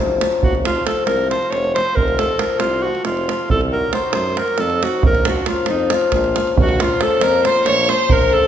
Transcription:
Already playing: F#1 F3 F4
0.21 F3 A#3 C#4 F4, davul high
0.32 davul high
0.42 F1 F#4, davul low
0.55 davul high
0.64 F3 A3 C4 F4, davul high
0.85 F3 A3 C4 F4 A4, davul high
1.06 C2 A#4, davul high
1.30 F3 A3 C4 F4 C5, davul high
1.43 davul high
1.51 F1 C#5, davul high
1.64 davul high
1.75 F3 A3 C4 F4 C5, davul high
1.96 F1 A#4, davul low
2.08 davul high
2.18 F3 A3 C4 F4 A4, davul high
2.39 F3 A3 C4 F4 A#4, davul high
2.59 C2 F4, davul high
2.83 F3 A3 C4 F4 F#4
2.95 davul high
3.05 F1 F4, davul high
3.17 davul high
3.29 F3 A3 C4 F4, davul high
3.49 C2 A4, davul low
3.61 davul high
3.72 F#3 C4 D#4 F#4 A#4
3.92 F#3 C4 D#4 F#4 C5, davul high
4.13 F#2 C5, davul high
4.37 F#3 C4 D#4 F#4 A#4, davul high
4.48 davul high
4.58 F2 A4, davul high
4.70 davul high
4.82 F#3 C4 D#4 F#4, davul high
5.03 A#1 A#4, davul low
5.15 davul high
5.25 F3 A#3 C#4 F4 F#4, davul high
5.36 davul high
5.46 F3 A#3 C#4 F4, davul high
5.56 davul high
5.66 F2 D#4, davul high
5.90 F3 A#3 C#4 F4, davul high
6.01 davul high
6.12 A#1 F4, davul high, davul low
6.24 davul high
6.35 F3 A#3 C#4 F4, davul high
6.47 davul high
6.57 A#1 F#4, davul low
6.61 F#4
6.69 davul high
6.79 F3 A#3 C#4 F4, davul high
6.99 F3 A#3 C#4 F4 A4, davul high
7.20 F2 A#4, davul high
7.44 F3 A#3 C#4 F4 C5, davul high
7.56 davul high
7.65 A#1 C#5, davul high
7.77 davul high
7.88 F3 A#3 C#4 F4 C5, davul high
8.09 A#1 A#4, davul low
8.22 davul high
8.32 F3 A#3 C#4 F4 A4

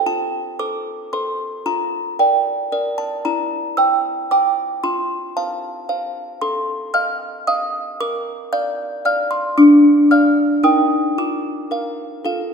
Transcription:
0.06 F4 A5
0.59 A4 C5 D6
1.13 A4 C5 C6
1.66 F4 A#5
2.19 A#4 D5 G5
2.72 A#4 D5
2.98 A5
3.25 E4 A#5
3.77 C5 G5 E6
4.31 C5 G5 D6
4.84 F4 C6
5.37 C5 F5 A5
5.89 C5 F5
6.41 A4 C6
6.94 D#5 F5 F6
7.47 D#5 F5 D#6
8.00 A#4 D6
8.53 D5 F5 G6
9.05 D5 F5 F6
9.31 C6
9.58 D4 D6
10.11 D5 F5 F6
10.63 D#4 A#4 G5 D#6
11.18 F4 D6
11.71 A#4 F5
12.25 F4 A4 F5

